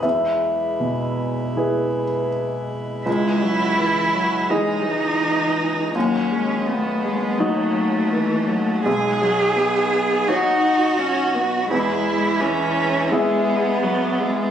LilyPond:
<<
  \new Staff \with { instrumentName = "Upright piano" } { \time 4/4 \key cis \minor \tempo 4 = 83 << { e''2. r4 | r1 | r1 | r1 |
r1 | } \\ { e,4 b,4 <e' gis' b'>2 | cis,2 <e gis' dis''>2 | dis,2 <dis' fis' dis''>2 | b,,2 <dis' fis' cis''>2 |
e,2 <e' gis' e''>2 | } >> }
  \new Staff \with { instrumentName = "Harmonium" } { \time 4/4 \key cis \minor << { b'1 | cis''1 | dis''1 | cis''1 |
e''1 | } \\ { e'1 | cis'1~ | cis'1 | dis'1 |
e'1 | } >> }
  \new Staff \with { instrumentName = "Harmonium" } { \clef bass \time 4/4 \key cis \minor gis1 | gis1 | fis1~ | fis1 |
gis1 | }
  \new Staff \with { instrumentName = "Cello" } { \time 4/4 \key cis \minor r1 | e'2 dis'2 | cis'4 b4 a2 | gis'2 fis'2 |
e'4 cis'4 b2 | }
  \new Staff \with { instrumentName = "Viola" } { \clef bass \time 4/4 \key cis \minor r1 | gis8 fis8 e8 fis8 gis8 e4. | fis8 gis8 a8 gis8 fis4 e8 fis8 | gis8 fis8 b4 dis'4 cis'8 b8 |
gis4 e4 gis4 fis8 gis8 | }
>>